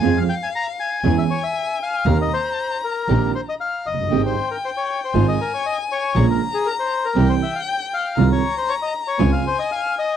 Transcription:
X:1
M:4/4
L:1/16
Q:1/4=118
K:Fm
V:1 name="Violin"
f8 a8 | b12- b2 z2 | g8 a8 | b8 g8 |
b8 a8 |]
V:2 name="Bandoneon"
a f g a b2 a3 _f d f3 =f2- | f e c4 B4 c e f2 e2- | e c2 B c d2 c2 e B d e2 d2- | d B2 A B c2 B2 c =e f g2 f2- |
f d2 c d e2 d2 f c e f2 e2 |]
V:3 name="String section"
[CFA]2 z6 [D_FA]2 z6 | [CEG]2 z6 [CEG]2 z6 | [A,CG]2 z6 [A,EF]2 z6 | [B,DA]2 z6 [C=EG]2 z6 |
[A,EF]2 z6 [CDF]2 z6 |]
V:4 name="Grand piano" clef=bass
[F,,F,A,CA]2 z6 [_F,,_F,A,DA]2 z6 | [E,,E,B,CG]2 z6 [B,,,B,,E,B,CG]2 z4 z/2 F,,,/2 _G,,,/2 =G,,,/2 | [A,,,A,,E,A,CG]2 z6 [A,,,A,,E,A,CF]2 z6 | [B,,,B,,D,A,B,F]2 z6 [C,,C,=E,G,CG]2 z6 |
[C,,C,E,A,CF]2 z6 [D,,D,A,CF]2 z6 |]
V:5 name="Double bass" clef=bass
F,,2 z6 _F,,2 z6 | E,,2 z6 B,,,2 z4 _G,,,2 | A,,,2 z6 A,,,2 z6 | B,,,2 z6 C,,2 z6 |
C,,2 z6 D,,2 z6 |]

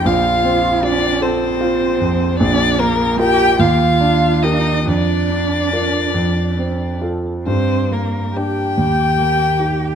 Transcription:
X:1
M:6/8
L:1/8
Q:3/8=49
K:Bb
V:1 name="Violin"
f2 d c3 | d B g f2 e | d4- d z | c B g4 |]
V:2 name="Cello"
F2 D C3 | D B, G F2 E | D4- D z | C B, G4 |]
V:3 name="Grand piano"
B,,, C F A F F,, | B,,, B, [FB] E,, D [GB] | F,, D [FB] F,, C [FA] | G,, B, [DG] E,, B, [EG] |]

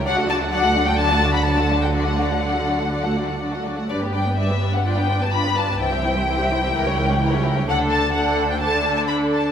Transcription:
X:1
M:4/4
L:1/16
Q:1/4=127
K:Dmix
V:1 name="Violin section"
f2 a2 f3 g a3 b a3 g | f12 z4 | d2 g2 e3 f g3 a b2 a2 | g16 |
f2 a2 f3 g a3 a b2 a2 |]
V:2 name="Violin section"
[Fd] [Af] [Fd] [Af] [Fd] [Af] [Fd] [Af] [Fd] [Af] [Fd] [Af] [Fd] [Af] [Fd] [Af] | [Fd] [Af] [Fd] [Af] [Fd] [Af] [Fd] [Af] [Fd] [Af] [Fd] [Af] [Fd] [Af] [Fd] [Af] | [Bd] [GB] [Bd] [GB] [Bd] [GB] [Bd] [GB] [Bd] [GB] [Bd] [GB] [Bd] [GB] [Bd] [GB] | [Ec] [Ge] [Ec] [Ge] [Ec] [Ge] [Ec] [Ge] [E^A] [G^c] [EA] [Gc] [EA] [Gc] [EA] [Gc] |
A4 A4 A8 |]
V:3 name="Viola section"
[F,D] [A,F] [F,D] [A,F] [F,D] [A,F] [F,D] [A,F] [F,D] [A,F] [F,D] [A,F] [F,D] [A,F] [F,D] [A,F] | [F,D] [A,F] [F,D] [A,F] [F,D] [A,F] [F,D] [A,F] [F,D] [A,F] [F,D] [A,F] [F,D] [A,F] [F,D] [A,F] | [G,D] B, [G,D] B, [G,D] B, [G,D] B, [D=F] [B,D] [DF] [B,D] [DF] [B,D] [DF] [B,D] | [E,E] [G,C] [E,E] [G,C] [E,E] [G,C] [E,E] [G,C] [E,E] [G,^C] [E,E] [G,C] [E,E] [G,C] [E,E] [G,C] |
[D,D]4 [D,D]4 [D,D]8 |]
V:4 name="Cello section" clef=bass
D,16- | D,12- D,2 z2 | G,,16 | C,,8 ^C,,8 |
D,,16 |]
V:5 name="Double bass section" clef=bass
D,,16- | D,,12- D,,2 z2 | G,,,16 | C,,8 ^C,,8 |
D,,16 |]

